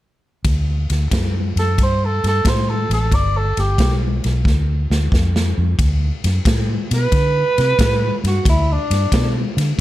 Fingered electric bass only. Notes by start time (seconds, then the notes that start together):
0.44 D2
0.90 D2
1.11 F#2
1.56 F#2
1.78 G2
2.24 G2
2.44 A2
2.90 A1
3.11 G1
3.57 G1
3.78 B1
4.25 B1
4.45 D2
4.90 D2
5.12 F2
5.58 F2
5.78 D2
6.24 F#2
6.45 A2
6.91 B2
7.12 D3
7.58 C3
7.79 A2
8.24 G2
8.45 D2
8.90 G2
9.12 B2
9.57 D3